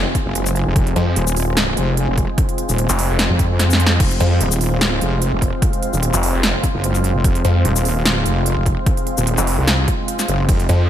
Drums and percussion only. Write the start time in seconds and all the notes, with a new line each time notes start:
0.15 kick, closed hi-hat
0.35 closed hi-hat
0.46 shaker
0.56 closed hi-hat
0.76 kick, closed hi-hat
0.87 closed hi-hat
0.96 closed hi-hat
1.16 closed hi-hat
1.27 shaker
1.37 open hi-hat
1.57 snare, closed hi-hat
1.77 closed hi-hat
1.97 closed hi-hat
2.18 kick, closed hi-hat
2.38 kick, closed hi-hat
2.49 closed hi-hat
2.58 closed hi-hat
2.69 closed hi-hat, shaker
2.78 closed hi-hat
2.89 shaker
2.99 open hi-hat
3.19 snare, closed hi-hat
3.39 kick, closed hi-hat
3.59 snare, closed hi-hat
3.70 snare, shaker
3.80 closed hi-hat
3.87 snare
4.00 kick, closed hi-hat, crash
4.11 closed hi-hat
4.20 closed hi-hat
4.41 closed hi-hat
4.52 shaker
4.61 open hi-hat
4.81 snare, closed hi-hat
5.01 closed hi-hat
5.22 closed hi-hat
5.42 kick, closed hi-hat
5.62 kick, closed hi-hat
5.73 closed hi-hat
5.83 closed hi-hat
5.93 shaker
6.03 closed hi-hat
6.14 shaker
6.23 open hi-hat
6.43 snare, closed hi-hat
6.64 kick, closed hi-hat
6.84 closed hi-hat
6.95 shaker
7.04 closed hi-hat
7.24 kick, closed hi-hat
7.35 closed hi-hat
7.45 closed hi-hat
7.65 closed hi-hat
7.76 shaker
7.85 open hi-hat
8.05 snare, closed hi-hat
8.26 closed hi-hat
8.46 closed hi-hat
8.66 kick, closed hi-hat
8.86 kick, closed hi-hat
8.97 closed hi-hat
9.07 closed hi-hat
9.18 shaker
9.27 closed hi-hat
9.38 shaker
9.47 open hi-hat
9.68 snare, closed hi-hat
9.88 kick, closed hi-hat
10.08 closed hi-hat
10.19 snare, shaker
10.28 closed hi-hat
10.49 kick, closed hi-hat, ride
10.60 closed hi-hat
10.69 closed hi-hat